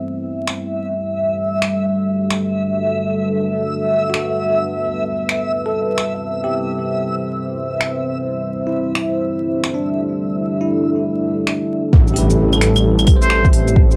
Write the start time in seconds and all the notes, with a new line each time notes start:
Already playing: G3 C4 E4 A4 C5 E5
0.48 finger snap
0.93 D4 F#4 A4 B4
1.62 finger snap
2.30 finger snap
4.10 F#4
4.14 A4, finger snap
4.61 C4 E4 C5
5.29 finger snap
5.66 A4
5.98 finger snap
6.44 G4
7.81 finger snap
8.27 G3 D4 A4
8.67 E4
8.95 finger snap
9.64 finger snap
9.74 D4
10.10 D5
10.61 E4
11.47 finger snap
11.93 A1 G3 C4 E4 G4 A4, kick, impact
12.08 shaker
12.14 G4, open hi-hat
12.18 B4
12.30 shaker
12.53 claves, shaker
12.57 A4
12.61 finger snap, open hi-hat
12.76 claves, shaker
12.99 claves, shaker
13.07 kick, open hi-hat, claves
13.16 C5
13.22 C5 E5, shaker
13.30 finger snap
13.45 kick, shaker
13.53 open hi-hat
13.68 shaker
13.76 kick
13.91 shaker